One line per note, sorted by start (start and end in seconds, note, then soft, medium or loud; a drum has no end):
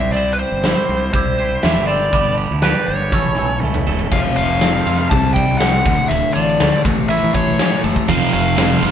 0.00 0.43 C2 medium
0.00 0.12 C3 medium
0.00 0.13 G3 medium
0.00 0.13 C4 medium
0.00 0.14 E4 medium
0.00 0.15 G4 medium
0.00 0.15 C5 medium
0.00 0.12 E5 medium
0.12 0.64 C3 medium
0.12 0.64 G3 medium
0.12 0.40 C4 medium
0.12 0.40 E4 medium
0.12 0.39 G4 medium
0.12 0.32 D5 medium
0.12 open hi-hat medium
0.16 0.38 C5 medium
0.33 0.39 B4 medium
0.39 0.62 C4 medium
0.39 0.64 E4 medium
0.39 0.64 G4 medium
0.39 0.65 C5 medium
0.39 1.12 C5 medium
0.39 open hi-hat soft
0.52 0.73 G1 medium
0.63 1.13 C4 medium
0.63 1.14 E4 medium
0.63 1.14 G4 medium
0.63 1.15 C5 medium
0.63 snare medium
0.63 open hi-hat medium
0.89 1.10 C2 medium
0.89 open hi-hat soft
1.13 1.56 C2 medium
1.13 1.63 C3 medium
1.13 1.64 G3 medium
1.13 1.39 C4 medium
1.13 1.39 E4 medium
1.13 1.38 G4 medium
1.13 1.65 C5 medium
1.13 1.37 C5 medium
1.13 kick medium
1.13 open hi-hat medium
1.38 1.61 C4 soft
1.38 1.62 E4 medium
1.38 1.64 G4 medium
1.38 1.64 C5 medium
1.38 open hi-hat soft
1.63 1.74 E2 medium
1.63 1.89 C4 medium
1.63 1.88 E4 medium
1.63 1.87 G4 medium
1.63 1.86 C5 medium
1.63 1.87 E5 medium
1.63 snare medium
1.63 open hi-hat medium
1.76 2.08 G1 medium
1.87 2.13 C4 medium
1.87 2.12 E4 medium
1.87 2.12 G4 medium
1.87 2.12 C5 medium
1.87 2.34 D5 medium
1.87 open hi-hat soft
2.12 2.45 G1 medium
2.12 2.62 G2 medium
2.12 2.63 D3 medium
2.12 2.39 G3 medium
2.12 2.38 B3 medium
2.12 2.37 D4 medium
2.12 2.35 G4 medium
2.12 kick medium
2.12 open hi-hat medium
2.37 2.61 G3 medium
2.37 2.62 B3 medium
2.37 2.62 D4 medium
2.37 2.64 G4 medium
2.37 open hi-hat soft
2.51 2.72 D2 medium
2.62 3.11 G3 medium
2.62 3.11 B3 medium
2.62 3.12 D4 medium
2.62 3.12 G4 medium
2.62 2.89 B4 medium
2.62 snare loud
2.62 open hi-hat medium
2.87 3.09 G1 medium
2.87 3.58 C#5 medium
2.87 open hi-hat medium
3.12 3.34 A1 medium
3.12 3.62 A2 medium
3.12 3.62 E3 medium
3.12 3.39 A3 medium
3.12 3.38 C#4 medium
3.12 3.37 E4 medium
3.12 3.36 A4 medium
3.12 kick loud
3.12 snare soft
3.37 3.60 B1 medium
3.37 3.61 A3 medium
3.37 3.62 C#4 medium
3.37 3.63 E4 medium
3.37 3.64 A4 medium
3.37 high tom medium
3.62 3.85 C#2 medium
3.62 3.89 A3 medium
3.62 3.88 C#4 medium
3.62 3.87 E4 medium
3.62 3.86 A4 medium
3.62 mid tom medium
3.74 mid tom medium
3.87 4.10 E1 medium
3.87 4.12 A3 medium
3.87 4.12 C#4 medium
3.87 4.11 E4 medium
3.87 4.11 A4 medium
3.87 floor tom medium
3.99 floor tom medium
4.11 4.23 F1 medium
4.11 4.61 F2 medium
4.11 5.12 F2 medium
4.11 4.61 C3 medium
4.11 4.62 F3 medium
4.11 4.19 F5 medium
4.11 kick medium
4.11 crash medium
4.36 4.79 F1 medium
4.36 5.12 A3 medium
4.36 5.07 F5 medium
4.36 ride medium
4.61 4.85 F2 medium
4.61 4.86 C3 medium
4.61 4.86 F3 medium
4.61 5.12 C4 medium
4.61 snare loud
4.61 ride medium
4.86 5.07 F2 medium
4.86 5.10 F2 medium
4.86 5.10 C3 medium
4.86 5.10 F3 medium
4.86 5.12 F4 medium
4.86 ride medium
5.10 5.43 C2 medium
5.10 5.60 C3 medium
5.10 5.86 C3 medium
5.10 5.60 G3 medium
5.10 5.61 C4 medium
5.10 5.33 A5 medium
5.10 kick loud
5.10 ride medium
5.34 5.86 G3 medium
5.34 5.58 G5 medium
5.34 kick medium
5.34 ride medium
5.50 5.81 C2 medium
5.58 5.84 C3 medium
5.58 5.85 G3 medium
5.58 5.86 C4 medium
5.58 6.11 F#5 medium
5.58 snare loud
5.58 ride medium
5.62 5.85 C4 medium
5.86 5.96 D1 medium
5.86 6.09 D2 medium
5.86 6.10 D2 medium
5.86 6.10 A2 medium
5.86 6.10 D3 medium
5.86 kick loud
5.86 ride medium
6.08 6.21 D1 loud
6.08 6.58 D2 medium
6.08 6.85 D2 medium
6.08 6.59 A2 medium
6.08 6.60 D3 medium
6.08 6.33 E5 medium
6.08 ride medium
6.34 6.57 A1 medium
6.34 6.85 D3 medium
6.34 6.81 D5 medium
6.34 ride medium
6.60 6.83 D2 medium
6.60 6.71 D2 loud
6.60 6.83 A2 medium
6.60 6.84 D3 medium
6.60 6.85 A3 medium
6.60 snare medium
6.60 ride medium
6.84 7.17 A1 medium
6.84 7.09 A2 medium
6.84 8.08 A2 medium
6.84 7.10 E3 loud
6.84 7.10 A3 loud
6.84 kick loud
6.84 ride medium
7.09 7.58 A2 medium
7.09 7.59 E3 medium
7.09 7.59 A3 loud
7.09 8.09 E4 medium
7.09 7.34 E5 loud
7.09 ride medium
7.23 7.33 A1 medium
7.34 7.56 A1 medium
7.34 8.09 A3 medium
7.34 7.80 C#5 medium
7.34 kick medium
7.34 ride medium
7.59 7.82 A2 medium
7.59 7.83 E3 medium
7.59 7.83 A3 loud
7.59 8.09 C#4 medium
7.59 snare loud
7.59 ride medium
7.83 7.94 F#1 medium
7.83 8.07 A2 medium
7.83 8.07 E3 medium
7.83 8.07 A3 medium
7.83 8.09 A4 medium
7.83 ride medium
7.96 kick medium
8.08 8.19 F1 medium
8.08 8.56 F2 medium
8.08 8.91 F2 medium
8.08 8.57 C3 medium
8.08 8.57 F3 loud
8.08 8.32 F5 medium
8.08 kick medium
8.08 ride medium
8.33 8.76 F1 medium
8.33 8.91 A3 medium
8.33 8.91 F5 medium
8.33 ride medium
8.57 8.81 F2 medium
8.57 8.81 C3 medium
8.57 8.82 F3 medium
8.57 8.91 C4 medium
8.57 snare loud
8.57 ride medium
8.82 8.91 G1 medium
8.82 8.91 F2 medium
8.82 8.91 C3 medium
8.82 8.91 F3 medium
8.82 8.91 F4 medium
8.82 ride medium